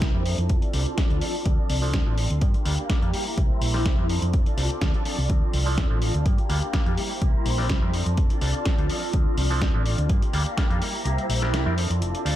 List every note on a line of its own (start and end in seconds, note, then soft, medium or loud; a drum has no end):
0.00 0.12 C2 medium
0.00 0.11 G3 medium
0.00 0.25 G3 medium
0.00 0.26 A#3 medium
0.00 0.11 C4 medium
0.00 0.12 D4 medium
0.00 0.12 E4 medium
0.00 0.25 E4 medium
0.00 0.26 E4 medium
0.00 0.27 G4 medium
0.00 0.12 A#4 loud
0.00 0.25 C5 medium
0.00 0.24 A#5 medium
0.00 kick loud
0.00 snare loud
0.00 closed hi-hat medium
0.14 0.34 F2 loud
0.14 0.23 G3 medium
0.14 0.23 C4 medium
0.14 0.23 D4 medium
0.14 0.23 E4 medium
0.14 0.23 A#4 medium
0.25 0.38 F3 medium
0.25 0.39 C4 medium
0.25 0.38 D4 medium
0.25 2.40 F4 medium
0.25 0.36 A4 medium
0.25 2.40 D5 medium
0.25 1.45 A5 medium
0.25 open hi-hat medium
0.38 0.48 F2 medium
0.38 0.64 C4 soft
0.38 0.62 D4 soft
0.38 0.60 A4 medium
0.38 closed hi-hat medium
0.49 0.61 F1 medium
0.49 kick loud
0.49 closed hi-hat medium
0.62 0.88 C4 soft
0.62 0.86 D4 soft
0.62 0.84 A4 medium
0.62 closed hi-hat soft
0.73 0.85 C2 medium
0.73 0.83 G3 medium
0.73 0.83 C4 medium
0.73 0.83 D4 medium
0.73 0.83 F4 medium
0.73 0.83 A4 medium
0.73 open hi-hat loud
0.86 0.97 C4 soft
0.86 0.97 D4 medium
0.86 0.97 A4 medium
0.86 closed hi-hat soft
0.97 1.10 F3 medium
0.97 1.07 G3 medium
0.97 1.07 C4 medium
0.97 1.11 C4 medium
0.97 1.07 D4 medium
0.97 1.10 D4 medium
0.97 1.07 F4 medium
0.97 1.07 A4 loud
0.97 1.09 A4 loud
0.97 kick loud
0.97 snare loud
0.97 closed hi-hat medium
1.10 1.20 D2 loud
1.10 1.19 G3 medium
1.10 1.19 C4 medium
1.10 1.21 C4 soft
1.10 1.19 D4 medium
1.10 1.22 D4 medium
1.10 1.19 F4 medium
1.10 1.21 A4 medium
1.10 1.19 A4 medium
1.10 closed hi-hat soft
1.21 1.34 F3 medium
1.21 1.35 C4 medium
1.21 1.34 D4 medium
1.21 1.33 A4 medium
1.21 open hi-hat medium
1.34 1.45 C4 medium
1.34 1.45 D4 medium
1.34 1.45 A4 medium
1.45 1.56 D2 medium
1.45 1.82 F3 medium
1.45 1.83 C4 medium
1.45 1.82 D4 medium
1.45 1.81 A4 medium
1.45 2.41 C6 medium
1.45 kick loud
1.45 closed hi-hat medium
1.70 1.94 C2 loud
1.70 open hi-hat loud
1.82 2.03 F3 medium
1.82 2.03 C4 medium
1.82 1.93 C4 soft
1.82 2.03 D4 medium
1.82 1.93 D4 medium
1.82 2.03 E4 medium
1.82 1.93 A4 medium
1.82 2.04 A4 loud
1.93 2.04 D2 medium
1.93 2.16 F3 medium
1.93 2.17 C4 medium
1.93 2.18 D4 medium
1.93 2.18 A4 medium
1.93 kick loud
1.93 snare loud
1.93 closed hi-hat medium
2.06 2.26 A1 medium
2.06 2.15 F3 medium
2.06 2.15 C4 medium
2.06 2.15 D4 medium
2.06 2.15 E4 medium
2.06 2.15 A4 loud
2.17 2.30 F3 medium
2.17 2.31 C4 medium
2.17 2.30 D4 medium
2.17 2.29 A4 medium
2.17 open hi-hat medium
2.30 2.40 D2 medium
2.30 2.42 C4 soft
2.30 2.41 D4 soft
2.30 2.41 A4 medium
2.30 closed hi-hat soft
2.41 2.54 F3 medium
2.41 2.55 A#3 medium
2.41 2.54 D4 medium
2.41 3.13 G4 medium
2.41 2.53 G4 medium
2.41 3.13 F5 medium
2.41 4.08 A#5 medium
2.41 kick loud
2.41 closed hi-hat medium
2.54 2.79 A#3 soft
2.54 2.78 D4 medium
2.54 2.76 G4 medium
2.54 closed hi-hat soft
2.65 2.76 D2 medium
2.65 2.75 G3 medium
2.65 2.75 A#3 medium
2.65 2.75 D4 medium
2.65 2.75 F4 medium
2.65 2.75 A4 medium
2.65 open hi-hat loud
2.77 2.89 A#3 soft
2.77 2.89 D4 soft
2.77 2.89 G4 medium
2.77 closed hi-hat soft
2.89 3.02 F3 medium
2.89 2.99 G3 medium
2.89 2.99 A#3 medium
2.89 3.03 A#3 medium
2.89 2.99 D4 medium
2.89 3.02 D4 medium
2.89 2.99 F4 medium
2.89 3.00 G4 loud
2.89 2.99 A4 loud
2.89 kick loud
2.89 snare loud
2.89 closed hi-hat medium
3.01 3.12 F2 medium
3.01 3.11 G3 medium
3.01 3.11 A#3 medium
3.01 3.13 A#3 medium
3.01 3.11 D4 medium
3.01 3.14 D4 medium
3.01 3.11 F4 medium
3.01 3.13 G4 medium
3.01 3.11 A4 medium
3.01 closed hi-hat soft
3.13 3.26 G3 medium
3.13 3.27 A#3 medium
3.13 4.09 E4 medium
3.13 3.26 E4 medium
3.13 3.24 G4 medium
3.13 4.09 C5 medium
3.13 open hi-hat medium
3.25 3.36 A#3 soft
3.25 3.37 E4 medium
3.25 3.37 G4 medium
3.37 3.48 C2 medium
3.37 3.74 G3 medium
3.37 3.74 A#3 medium
3.37 3.74 E4 medium
3.37 3.72 G4 loud
3.37 kick loud
3.37 closed hi-hat medium
3.61 3.86 A#1 loud
3.61 open hi-hat loud
3.74 3.95 G3 medium
3.74 3.84 A#3 medium
3.74 3.95 C4 medium
3.74 3.95 D4 medium
3.74 3.95 E4 medium
3.74 3.85 E4 medium
3.74 3.85 G4 medium
3.74 3.96 A#4 loud
3.74 snare soft
3.85 3.96 C2 medium
3.85 4.08 G3 medium
3.85 4.09 A#3 medium
3.85 4.10 E4 medium
3.85 4.10 G4 medium
3.85 kick loud
3.85 snare loud
3.85 closed hi-hat medium
3.98 4.18 F2 medium
3.98 4.07 G3 medium
3.98 4.07 C4 medium
3.98 4.07 D4 medium
3.98 4.07 E4 medium
3.98 4.07 A#4 medium
4.09 4.46 F3 medium
4.09 4.47 C4 medium
4.09 4.46 D4 medium
4.09 5.28 F4 medium
4.09 4.44 A4 medium
4.09 6.24 D5 medium
4.09 5.29 A5 medium
4.09 open hi-hat medium
4.22 4.32 F2 medium
4.22 closed hi-hat soft
4.33 4.44 F1 medium
4.33 kick loud
4.33 closed hi-hat medium
4.45 4.71 C4 soft
4.45 4.70 D4 soft
4.45 4.68 A4 medium
4.45 closed hi-hat soft
4.57 4.68 C2 medium
4.57 4.67 G3 medium
4.57 4.67 C4 medium
4.57 4.67 D4 medium
4.57 4.67 F4 medium
4.57 4.67 A4 medium
4.57 open hi-hat loud
4.69 4.81 C4 soft
4.69 4.81 D4 soft
4.69 4.81 A4 medium
4.69 muted fingered electric bass stroke soft
4.69 closed hi-hat soft
4.81 4.92 D2 medium
4.81 4.94 F3 medium
4.81 4.91 G3 medium
4.81 4.91 C4 medium
4.81 4.95 C4 medium
4.81 4.91 D4 medium
4.81 4.94 D4 medium
4.81 4.91 F4 medium
4.81 4.91 A4 loud
4.81 4.92 A4 medium
4.81 kick loud
4.81 snare loud
4.81 closed hi-hat medium
4.93 5.03 G3 medium
4.93 5.03 C4 medium
4.93 5.05 C4 soft
4.93 5.03 D4 medium
4.93 5.06 D4 medium
4.93 5.03 F4 medium
4.93 5.05 A4 medium
4.93 5.03 A4 medium
4.93 closed hi-hat soft
5.05 5.18 F3 medium
5.05 5.19 C4 medium
5.05 5.18 D4 medium
5.05 5.16 A4 medium
5.05 muted fingered electric bass stroke soft
5.05 open hi-hat medium
5.17 5.28 C2 medium
5.17 5.29 C4 soft
5.17 5.29 D4 medium
5.17 5.29 A4 medium
5.29 5.40 D2 medium
5.29 5.66 F3 medium
5.29 5.67 C4 medium
5.29 5.66 D4 medium
5.29 6.25 F4 medium
5.29 5.64 A4 medium
5.29 6.24 C6 medium
5.29 kick loud
5.29 closed hi-hat medium
5.53 5.78 C2 loud
5.53 open hi-hat loud
5.66 5.87 F3 medium
5.66 5.87 C4 medium
5.66 5.76 C4 soft
5.66 5.87 D4 medium
5.66 5.77 D4 medium
5.66 5.87 E4 medium
5.66 5.77 A4 medium
5.66 5.88 A4 loud
5.77 5.88 D2 medium
5.77 6.00 F3 medium
5.77 6.01 C4 medium
5.77 6.02 D4 medium
5.77 6.02 A4 loud
5.77 kick loud
5.77 snare loud
5.77 closed hi-hat medium
5.90 6.10 A1 medium
5.90 5.99 F3 medium
5.90 5.99 C4 medium
5.90 5.99 D4 medium
5.90 5.99 E4 medium
5.90 5.99 A4 loud
6.01 6.14 F3 medium
6.01 6.15 C4 medium
6.01 6.14 D4 medium
6.01 6.12 A4 medium
6.01 open hi-hat medium
6.14 6.24 D2 medium
6.14 6.25 C4 soft
6.14 6.25 D4 medium
6.14 6.25 A4 medium
6.14 closed hi-hat soft
6.25 6.38 F3 medium
6.25 6.39 A#3 medium
6.25 6.38 D4 medium
6.25 6.97 G4 medium
6.25 6.36 G4 medium
6.25 6.97 F5 medium
6.25 6.96 A#5 medium
6.25 kick loud
6.25 closed hi-hat medium
6.38 6.64 A#3 soft
6.38 6.62 D4 medium
6.38 6.60 G4 medium
6.38 closed hi-hat soft
6.49 6.60 D2 medium
6.49 6.59 G3 medium
6.49 6.59 A#3 medium
6.49 6.59 D4 medium
6.49 6.59 F4 medium
6.49 6.59 A4 medium
6.49 open hi-hat loud
6.62 6.73 A#3 soft
6.62 6.73 D4 medium
6.62 6.73 G4 medium
6.62 closed hi-hat soft
6.73 6.86 F3 medium
6.73 6.83 G3 medium
6.73 6.83 A#3 medium
6.73 6.87 A#3 medium
6.73 6.83 D4 medium
6.73 6.86 D4 medium
6.73 6.83 F4 medium
6.73 6.84 G4 loud
6.73 6.83 A4 loud
6.73 kick loud
6.73 snare loud
6.73 closed hi-hat medium
6.86 6.96 F2 loud
6.86 6.95 G3 medium
6.86 6.95 A#3 medium
6.86 6.97 A#3 soft
6.86 6.95 D4 medium
6.86 6.98 D4 medium
6.86 6.95 F4 medium
6.86 6.97 G4 medium
6.86 6.95 A4 medium
6.86 closed hi-hat soft
6.97 7.10 G3 medium
6.97 7.11 A#3 medium
6.97 7.93 E4 medium
6.97 7.10 E4 medium
6.97 7.09 G4 medium
6.97 7.93 C5 medium
6.97 7.93 A#5 medium
6.97 open hi-hat medium
7.10 7.21 A#3 soft
7.10 7.21 E4 medium
7.10 7.21 G4 medium
7.21 7.32 C2 medium
7.21 7.58 G3 medium
7.21 7.59 A#3 medium
7.21 7.58 E4 medium
7.21 7.56 G4 medium
7.21 kick loud
7.21 closed hi-hat medium
7.45 7.70 A#1 loud
7.45 open hi-hat loud
7.58 7.79 G3 medium
7.58 7.69 A#3 soft
7.58 7.79 C4 medium
7.58 7.79 D4 medium
7.58 7.80 E4 medium
7.58 7.69 E4 medium
7.58 7.69 G4 medium
7.58 7.80 A#4 loud
7.58 snare soft
7.69 7.80 C2 medium
7.69 7.93 G3 medium
7.69 7.94 A#3 medium
7.69 7.94 E4 medium
7.69 7.94 G4 medium
7.69 kick loud
7.69 snare loud
7.69 closed hi-hat medium
7.82 8.02 F2 medium
7.82 7.91 G3 medium
7.82 7.91 C4 medium
7.82 7.91 D4 medium
7.82 7.91 E4 medium
7.82 7.91 A#4 medium
7.93 8.06 F3 medium
7.93 8.07 C4 medium
7.93 8.06 D4 medium
7.93 10.07 F4 medium
7.93 8.04 A4 medium
7.93 9.12 D5 medium
7.93 9.13 A5 medium
7.93 open hi-hat medium
8.05 8.16 F2 medium
8.05 8.31 C4 soft
8.05 8.30 D4 soft
8.05 8.28 A4 medium
8.05 closed hi-hat medium
8.17 8.28 F1 medium
8.17 kick loud
8.17 closed hi-hat medium
8.29 8.65 C4 soft
8.29 8.65 D4 medium
8.29 8.65 A4 medium
8.29 closed hi-hat medium
8.41 8.52 C2 medium
8.41 8.51 G3 medium
8.41 8.51 C4 medium
8.41 8.51 D4 medium
8.41 8.51 F4 medium
8.41 8.52 A4 medium
8.41 open hi-hat loud
8.54 closed hi-hat soft
8.65 8.78 F3 medium
8.65 8.75 G3 medium
8.65 8.75 C4 medium
8.65 8.79 C4 medium
8.65 8.75 D4 medium
8.65 8.78 D4 loud
8.65 8.75 F4 medium
8.65 8.75 A4 loud
8.65 8.76 A4 medium
8.65 kick loud
8.65 snare loud
8.65 closed hi-hat medium
8.77 8.88 D2 loud
8.77 8.87 G3 medium
8.77 8.87 C4 medium
8.77 8.89 C4 soft
8.77 8.87 D4 medium
8.77 8.90 D4 medium
8.77 8.87 F4 medium
8.77 8.89 A4 medium
8.77 8.87 A4 medium
8.77 closed hi-hat soft
8.89 9.02 F3 medium
8.89 9.03 C4 medium
8.89 9.02 D4 medium
8.89 9.00 A4 medium
8.89 open hi-hat medium
9.02 9.13 C4 medium
9.02 9.13 D4 medium
9.02 9.13 A4 medium
9.13 9.24 D2 medium
9.13 9.50 F3 medium
9.13 9.50 C4 medium
9.13 9.50 D4 medium
9.13 9.49 A4 medium
9.13 10.09 D5 medium
9.13 10.09 C6 medium
9.13 kick loud
9.13 closed hi-hat medium
9.37 9.62 C2 loud
9.37 open hi-hat loud
9.50 9.71 F3 medium
9.50 9.71 C4 medium
9.50 9.61 C4 soft
9.50 9.71 D4 medium
9.50 9.61 D4 medium
9.50 9.72 E4 medium
9.50 9.61 A4 medium
9.50 9.72 A4 loud
9.61 9.72 D2 medium
9.61 9.84 F3 medium
9.61 9.85 C4 medium
9.61 9.86 D4 medium
9.61 9.86 A4 medium
9.61 kick loud
9.61 snare loud
9.61 closed hi-hat medium
9.74 9.94 A1 loud
9.74 9.83 F3 medium
9.74 9.83 C4 medium
9.74 9.83 D4 medium
9.74 9.83 E4 medium
9.74 9.83 A4 loud
9.85 9.98 F3 medium
9.85 9.99 C4 medium
9.85 9.98 D4 medium
9.85 9.96 A4 medium
9.85 open hi-hat medium
9.97 10.08 D2 medium
9.97 10.09 C4 soft
9.97 10.09 D4 soft
9.97 10.09 A4 medium
9.97 closed hi-hat medium
10.09 10.20 G2 medium
10.09 10.22 F3 medium
10.09 10.22 A#3 medium
10.09 10.22 D4 medium
10.09 10.81 G4 medium
10.09 10.20 G4 medium
10.09 10.81 F5 medium
10.09 11.76 A#5 medium
10.09 kick loud
10.09 closed hi-hat medium
10.21 10.56 A#3 soft
10.21 10.57 D4 medium
10.21 10.57 G4 medium
10.21 closed hi-hat medium
10.33 10.44 D2 medium
10.33 10.43 G3 medium
10.33 10.43 A#3 medium
10.33 10.43 D4 medium
10.33 10.43 F4 medium
10.33 10.43 A4 medium
10.33 open hi-hat loud
10.46 closed hi-hat soft
10.57 10.70 F3 medium
10.57 10.67 G3 medium
10.57 10.67 A#3 medium
10.57 10.70 A#3 medium
10.57 10.67 D4 medium
10.57 10.70 D4 medium
10.57 10.67 F4 medium
10.57 10.68 G4 loud
10.57 10.67 A4 loud
10.57 kick loud
10.57 snare loud
10.57 closed hi-hat medium
10.69 10.80 F2 loud
10.69 10.79 G3 medium
10.69 10.79 A#3 medium
10.69 10.80 A#3 medium
10.69 10.79 D4 medium
10.69 10.82 D4 medium
10.69 10.79 F4 medium
10.69 10.81 G4 medium
10.69 10.79 A4 medium
10.69 closed hi-hat soft
10.81 10.94 G3 medium
10.81 10.94 A#3 medium
10.81 11.77 E4 medium
10.81 10.94 E4 medium
10.81 10.92 G4 medium
10.81 11.77 C5 medium
10.81 open hi-hat medium
10.93 11.04 A#3 soft
10.93 11.05 E4 medium
10.93 11.05 G4 medium
11.05 11.16 C2 medium
11.05 11.42 G3 medium
11.05 11.42 A#3 medium
11.05 11.42 E4 medium
11.05 11.40 G4 loud
11.05 closed hi-hat medium
11.18 closed hi-hat soft
11.29 11.53 A#1 loud
11.29 open hi-hat loud
11.29 tambourine medium
11.42 11.63 G3 medium
11.42 11.52 A#3 soft
11.42 11.63 C4 medium
11.42 11.63 D4 medium
11.42 11.64 E4 medium
11.42 11.53 E4 medium
11.42 11.53 G4 medium
11.42 11.64 A#4 loud
11.42 snare soft
11.42 closed hi-hat soft
11.53 11.64 C2 medium
11.53 11.76 G3 medium
11.53 11.77 A#3 loud
11.53 11.78 E4 medium
11.53 11.78 G4 medium
11.53 snare loud
11.53 closed hi-hat medium
11.66 11.86 F2 medium
11.66 11.75 G3 medium
11.66 11.75 C4 medium
11.66 11.75 D4 medium
11.66 11.75 E4 medium
11.66 11.75 A#4 loud
11.77 11.90 F3 medium
11.77 11.91 C4 medium
11.77 11.90 D4 medium
11.77 12.36 F4 medium
11.77 11.88 A4 medium
11.77 12.36 D5 medium
11.77 12.36 A5 medium
11.77 open hi-hat medium
11.77 tambourine medium
11.90 12.00 F2 medium
11.90 12.16 C4 soft
11.90 12.14 D4 medium
11.90 12.12 A4 medium
11.90 closed hi-hat medium
12.01 12.12 F1 medium
12.01 closed hi-hat medium
12.13 12.36 C4 soft
12.13 12.36 D4 medium
12.13 12.36 A4 medium
12.13 closed hi-hat medium
12.25 12.36 D2 medium
12.25 12.35 G3 medium
12.25 12.35 C4 medium
12.25 12.35 D4 medium
12.25 12.35 F4 medium
12.25 12.35 A4 medium
12.25 open hi-hat loud